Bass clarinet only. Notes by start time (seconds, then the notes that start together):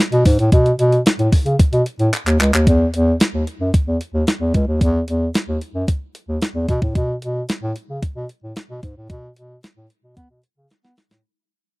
0.12 B2
0.26 G#2
0.39 A2
0.52 B2
0.79 B2
1.19 A2
1.46 C#3
1.73 B2
2.00 A2
2.26 D#2
2.40 C#2
2.53 D#2
2.67 E2
2.94 E2
3.34 D#2
3.61 F#2
3.87 E2
4.14 D#2
4.41 E2
4.54 C#2
4.68 D#2
4.81 E2
5.08 E2
5.48 D#2
5.74 F#2
6.28 D#2
6.55 E2
6.69 B2
6.82 A2
6.95 B2
7.22 B2
7.62 A2
7.90 C#3
8.16 B2
8.43 A2
8.70 B2
8.83 G#2
8.97 A2
9.10 B2
9.37 B2
9.77 A2
10.04 B2
10.17 B3
10.30 B2
10.57 C#3
10.84 B3
11.10 A2